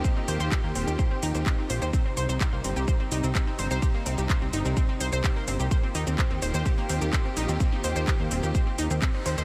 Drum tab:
HH |--o---o---o---o-|--o---o---o---o-|--o---o---o---o-|--o---o---o---o-|
SH |x-xxx-xxx-xxx-xx|x-xxx-xxx-xxx-xx|x-xxx-xxx-xxx-xx|x-xxx-xxx-xxx-xx|
CP |----x-------x---|----x-------x---|----x-------x---|----x-------x---|
BD |o---o---o---o---|o---o---o---o---|o---o---o---o---|o---o---o---o---|

HH |--o---o---o---o-|
SH |x-xxx-xxx-xxx-xx|
CP |----x-------x---|
BD |o---o---o---o---|